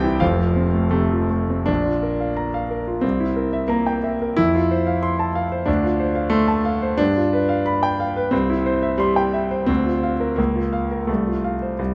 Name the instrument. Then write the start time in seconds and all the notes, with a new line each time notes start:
grand piano
Already playing: C2 E3 C4 G4 A4 F5 G5 A5
0.04 E4
0.20 F1 F2 F4 C5 F5
0.39 F3
0.56 C4
0.74 A3
0.91 C3 A3
1.11 F3
1.30 A3
1.49 C4
1.66 A#1 D4
1.85 F4
2.03 A#4
2.20 F5
2.37 A#5
2.54 F5
2.70 A#4
2.87 F4
3.01 C2 C4
3.20 E4
3.36 A#4
3.53 E5
3.68 A#3 A#5
3.87 G5
4.03 E5
4.22 A#4
4.37 F2 E4
4.55 F4
4.71 C5
4.87 F5
5.03 C6
5.19 A5
5.35 F5
5.52 C5
5.66 D2 D4
5.83 F4
6.00 C5
6.15 F5
6.30 A3 C6
6.48 A5
6.65 F5
6.82 C5
6.97 G2 D4
7.16 F4
7.33 B4
7.49 F5
7.66 B5
7.83 G5
8.00 F5
8.16 B4
8.31 C2 C4
8.50 E4
8.66 C5
8.82 E5
8.98 G3 C6
9.16 G5
9.33 E5
9.51 C5
9.66 D2 C4
9.86 F4
10.03 F5
10.20 A#4
10.36 C#2 A#3
10.55 F4
10.73 F5
10.91 A#4
11.07 C2 A3
11.27 F4
11.44 F5
11.62 C5
11.79 C2